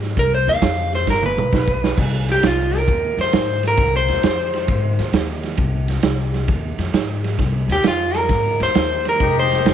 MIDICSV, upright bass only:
0, 0, Header, 1, 2, 480
1, 0, Start_track
1, 0, Key_signature, -3, "minor"
1, 0, Tempo, 451807
1, 177, Time_signature, 4, 2, 24, 8
1, 10346, End_track
2, 0, Start_track
2, 0, Title_t, "Upright bass"
2, 0, Program_c, 0, 32
2, 0, Note_on_c, 0, 44, 80
2, 166, Note_off_c, 0, 44, 0
2, 178, Note_on_c, 0, 36, 87
2, 489, Note_off_c, 0, 36, 0
2, 501, Note_on_c, 0, 39, 79
2, 653, Note_off_c, 0, 39, 0
2, 659, Note_on_c, 0, 41, 85
2, 1122, Note_off_c, 0, 41, 0
2, 1137, Note_on_c, 0, 31, 80
2, 1448, Note_off_c, 0, 31, 0
2, 1457, Note_on_c, 0, 35, 77
2, 1611, Note_off_c, 0, 35, 0
2, 1622, Note_on_c, 0, 35, 74
2, 2083, Note_off_c, 0, 35, 0
2, 2101, Note_on_c, 0, 36, 88
2, 2563, Note_off_c, 0, 36, 0
2, 2572, Note_on_c, 0, 36, 82
2, 3038, Note_off_c, 0, 36, 0
2, 3060, Note_on_c, 0, 39, 86
2, 3365, Note_off_c, 0, 39, 0
2, 3371, Note_on_c, 0, 41, 78
2, 3527, Note_off_c, 0, 41, 0
2, 3545, Note_on_c, 0, 44, 81
2, 4004, Note_off_c, 0, 44, 0
2, 4017, Note_on_c, 0, 36, 87
2, 4327, Note_off_c, 0, 36, 0
2, 4339, Note_on_c, 0, 39, 78
2, 4491, Note_off_c, 0, 39, 0
2, 4499, Note_on_c, 0, 41, 82
2, 4961, Note_off_c, 0, 41, 0
2, 4977, Note_on_c, 0, 44, 85
2, 5287, Note_off_c, 0, 44, 0
2, 5296, Note_on_c, 0, 39, 84
2, 5439, Note_off_c, 0, 39, 0
2, 5446, Note_on_c, 0, 39, 83
2, 5914, Note_off_c, 0, 39, 0
2, 5935, Note_on_c, 0, 36, 96
2, 6395, Note_off_c, 0, 36, 0
2, 6402, Note_on_c, 0, 36, 89
2, 6873, Note_off_c, 0, 36, 0
2, 6892, Note_on_c, 0, 39, 91
2, 7197, Note_off_c, 0, 39, 0
2, 7203, Note_on_c, 0, 41, 80
2, 7354, Note_off_c, 0, 41, 0
2, 7360, Note_on_c, 0, 44, 80
2, 7833, Note_off_c, 0, 44, 0
2, 7847, Note_on_c, 0, 36, 87
2, 8155, Note_off_c, 0, 36, 0
2, 8161, Note_on_c, 0, 39, 79
2, 8323, Note_off_c, 0, 39, 0
2, 8334, Note_on_c, 0, 41, 84
2, 8800, Note_off_c, 0, 41, 0
2, 8814, Note_on_c, 0, 44, 83
2, 9127, Note_off_c, 0, 44, 0
2, 9137, Note_on_c, 0, 39, 79
2, 9292, Note_off_c, 0, 39, 0
2, 9299, Note_on_c, 0, 39, 75
2, 9764, Note_off_c, 0, 39, 0
2, 9776, Note_on_c, 0, 29, 90
2, 10243, Note_off_c, 0, 29, 0
2, 10255, Note_on_c, 0, 29, 80
2, 10346, Note_off_c, 0, 29, 0
2, 10346, End_track
0, 0, End_of_file